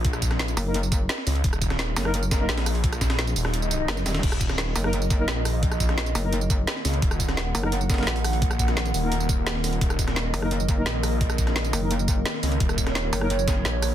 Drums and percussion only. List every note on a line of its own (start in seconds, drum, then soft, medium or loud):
0.05 kick loud
0.05 closed hi-hat loud
0.05 closed hi-hat medium
0.13 cross-stick medium
0.13 tambourine soft
0.22 kick medium
0.22 closed hi-hat medium
0.22 tambourine medium
0.31 cross-stick soft
0.31 snare soft
0.31 closed hi-hat soft
0.39 snare loud
0.39 closed hi-hat medium
0.48 closed hi-hat soft
0.48 tambourine soft
0.57 closed hi-hat medium
0.57 open hi-hat medium
0.57 tambourine medium
0.74 closed hi-hat medium
0.83 tambourine soft
0.92 kick loud
0.92 closed hi-hat medium
0.92 tambourine medium
1.09 snare loud
1.09 closed hi-hat loud
1.09 closed hi-hat medium
1.18 snare soft
1.27 snare medium
1.27 closed hi-hat medium
1.27 open hi-hat medium
1.27 tambourine medium
1.35 closed hi-hat soft
1.44 kick loud
1.44 closed hi-hat loud
1.44 closed hi-hat medium
1.53 cross-stick medium
1.53 tambourine soft
1.62 kick medium
1.62 closed hi-hat medium
1.62 tambourine medium
1.70 cross-stick soft
1.70 snare medium
1.70 closed hi-hat soft
1.79 snare loud
1.79 closed hi-hat loud
1.79 closed hi-hat medium
1.96 snare loud
1.96 closed hi-hat medium
1.96 open hi-hat medium
1.96 tambourine medium
2.05 cross-stick medium
2.14 closed hi-hat loud
2.14 closed hi-hat medium
2.23 tambourine soft
2.31 kick loud
2.31 snare loud
2.31 closed hi-hat medium
2.31 tambourine medium
2.49 snare loud
2.49 closed hi-hat medium
2.58 snare loud
2.58 closed hi-hat medium
2.66 cross-stick medium
2.66 open hi-hat medium
2.66 tambourine medium
2.75 closed hi-hat medium
2.84 kick loud
2.84 closed hi-hat loud
2.84 closed hi-hat medium
2.93 cross-stick medium
2.93 closed hi-hat soft
2.93 tambourine soft
3.01 kick medium
3.01 snare loud
3.01 closed hi-hat medium
3.01 tambourine medium
3.10 cross-stick soft
3.10 snare loud
3.10 closed hi-hat medium
3.10 closed hi-hat soft
3.19 snare loud
3.19 closed hi-hat medium
3.27 closed hi-hat soft
3.27 tambourine soft
3.36 closed hi-hat medium
3.36 open hi-hat medium
3.36 tambourine medium
3.45 cross-stick medium
3.45 snare soft
3.54 closed hi-hat medium
3.54 closed hi-hat loud
3.62 tambourine soft
3.71 closed hi-hat medium
3.71 tambourine medium
3.88 snare loud
3.88 closed hi-hat loud
3.88 closed hi-hat medium
3.97 snare medium
3.97 tambourine soft
4.06 snare loud
4.06 closed hi-hat medium
4.06 open hi-hat medium
4.06 tambourine medium
4.15 snare loud
4.15 closed hi-hat medium
4.15 closed hi-hat soft
4.23 kick loud
4.23 closed hi-hat loud
4.23 closed hi-hat medium
4.23 crash medium
4.32 cross-stick medium
4.32 tambourine soft
4.41 kick medium
4.41 closed hi-hat medium
4.41 tambourine medium
4.49 cross-stick soft
4.49 snare medium
4.49 closed hi-hat soft
4.58 snare loud
4.58 closed hi-hat medium
4.76 closed hi-hat medium
4.76 open hi-hat medium
4.76 tambourine medium
4.84 cross-stick medium
4.93 closed hi-hat loud
4.93 closed hi-hat medium
5.02 tambourine soft
5.10 kick loud
5.10 closed hi-hat medium
5.10 tambourine medium
5.28 snare loud
5.28 closed hi-hat loud
5.28 closed hi-hat medium
5.45 cross-stick medium
5.45 closed hi-hat medium
5.45 open hi-hat medium
5.45 tambourine medium
5.63 kick loud
5.63 closed hi-hat medium
5.63 closed hi-hat loud
5.71 cross-stick medium
5.71 tambourine soft
5.80 kick medium
5.80 closed hi-hat medium
5.80 tambourine medium
5.89 cross-stick soft
5.89 snare soft
5.89 closed hi-hat soft
5.98 snare loud
5.98 closed hi-hat medium
6.06 closed hi-hat soft
6.06 tambourine soft
6.15 closed hi-hat medium
6.15 open hi-hat medium
6.15 tambourine medium
6.33 closed hi-hat loud
6.33 closed hi-hat medium
6.41 tambourine soft
6.50 kick loud
6.50 closed hi-hat medium
6.50 tambourine medium
6.67 snare loud
6.67 closed hi-hat medium
6.67 closed hi-hat loud
6.76 snare soft
6.85 snare medium
6.85 closed hi-hat medium
6.85 open hi-hat medium
6.85 tambourine medium
6.94 closed hi-hat soft
7.02 kick loud
7.02 closed hi-hat loud
7.02 closed hi-hat medium
7.11 cross-stick medium
7.11 tambourine soft
7.20 kick medium
7.20 closed hi-hat medium
7.20 tambourine medium
7.29 cross-stick soft
7.29 snare medium
7.29 closed hi-hat soft
7.37 snare loud
7.37 closed hi-hat medium
7.55 closed hi-hat medium
7.55 open hi-hat medium
7.55 tambourine medium
7.63 cross-stick medium
7.72 closed hi-hat medium
7.81 tambourine soft
7.90 kick loud
7.90 snare medium
7.90 closed hi-hat medium
7.90 tambourine medium
7.94 snare medium
7.94 closed hi-hat medium
7.98 snare medium
7.98 closed hi-hat medium
8.03 snare medium
8.03 closed hi-hat medium
8.07 snare loud
8.07 closed hi-hat medium
8.16 closed hi-hat medium
8.24 cross-stick medium
8.24 open hi-hat medium
8.24 tambourine medium
8.33 closed hi-hat medium
8.42 kick loud
8.42 closed hi-hat medium
8.51 cross-stick medium
8.51 tambourine soft
8.59 kick medium
8.59 closed hi-hat medium
8.59 tambourine medium
8.68 cross-stick soft
8.68 snare soft
8.68 closed hi-hat soft
8.77 snare loud
8.77 closed hi-hat medium
8.86 closed hi-hat soft
8.86 tambourine soft
8.94 closed hi-hat medium
8.94 open hi-hat medium
8.94 tambourine medium
9.12 closed hi-hat medium
9.20 tambourine soft
9.29 kick loud
9.29 closed hi-hat medium
9.29 tambourine medium
9.47 snare loud
9.47 closed hi-hat medium
9.55 snare soft
9.64 snare medium
9.64 closed hi-hat medium
9.64 open hi-hat medium
9.64 tambourine medium
9.73 closed hi-hat soft
9.81 kick loud
9.81 closed hi-hat medium
9.90 cross-stick medium
9.90 tambourine soft
9.99 kick medium
9.99 closed hi-hat medium
9.99 tambourine medium
10.08 cross-stick soft
10.08 snare medium
10.08 closed hi-hat soft
10.16 snare loud
10.16 closed hi-hat medium
10.34 closed hi-hat medium
10.34 open hi-hat medium
10.34 tambourine medium
10.42 cross-stick medium
10.51 closed hi-hat medium
10.60 tambourine soft
10.69 kick loud
10.69 closed hi-hat medium
10.69 tambourine medium
10.86 snare loud
10.86 closed hi-hat medium
11.03 cross-stick medium
11.03 closed hi-hat medium
11.03 open hi-hat medium
11.03 tambourine medium
11.21 kick loud
11.21 closed hi-hat loud
11.21 closed hi-hat medium
11.30 cross-stick medium
11.30 tambourine soft
11.38 kick medium
11.38 closed hi-hat medium
11.38 tambourine medium
11.47 cross-stick soft
11.47 snare soft
11.47 closed hi-hat soft
11.56 snare loud
11.56 closed hi-hat medium
11.64 closed hi-hat soft
11.64 tambourine soft
11.73 closed hi-hat medium
11.73 open hi-hat medium
11.73 tambourine medium
11.91 closed hi-hat loud
11.91 closed hi-hat medium
11.99 tambourine soft
12.08 kick loud
12.08 closed hi-hat medium
12.08 tambourine medium
12.26 snare loud
12.26 closed hi-hat medium
12.34 snare soft
12.43 snare medium
12.43 closed hi-hat medium
12.43 open hi-hat medium
12.43 tambourine medium
12.52 closed hi-hat soft
12.60 kick loud
12.60 closed hi-hat loud
12.60 closed hi-hat medium
12.69 cross-stick medium
12.69 tambourine soft
12.78 kick medium
12.78 closed hi-hat medium
12.78 tambourine medium
12.87 cross-stick soft
12.87 snare medium
12.87 closed hi-hat soft
12.95 snare loud
12.95 closed hi-hat loud
12.95 closed hi-hat medium
13.13 closed hi-hat medium
13.13 open hi-hat medium
13.13 tambourine medium
13.21 cross-stick medium
13.30 closed hi-hat medium
13.39 tambourine soft
13.48 kick loud
13.48 snare loud
13.48 closed hi-hat medium
13.48 tambourine medium
13.65 snare loud
13.65 closed hi-hat loud
13.65 closed hi-hat medium
13.82 cross-stick medium
13.82 closed hi-hat medium
13.82 open hi-hat medium
13.82 tambourine medium